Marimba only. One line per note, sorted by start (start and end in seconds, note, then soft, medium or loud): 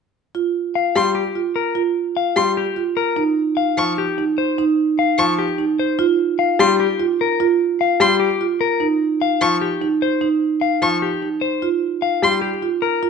0.35 0.61 F4 medium
1.35 1.62 F4 soft
1.75 2.02 F4 medium
2.76 3.03 F4 soft
3.16 3.43 D#4 medium
4.18 4.44 D#4 medium
4.58 4.84 D#4 medium
5.58 5.85 D#4 medium
5.99 6.25 F4 medium
7.00 7.26 F4 medium
7.40 7.66 F4 medium
8.41 8.67 F4 medium
8.80 9.07 D#4 medium
9.82 10.07 D#4 medium
10.21 10.48 D#4 medium
11.22 11.48 D#4 soft
11.62 11.89 F4 medium
12.63 12.89 F4 soft
13.03 13.10 F4 medium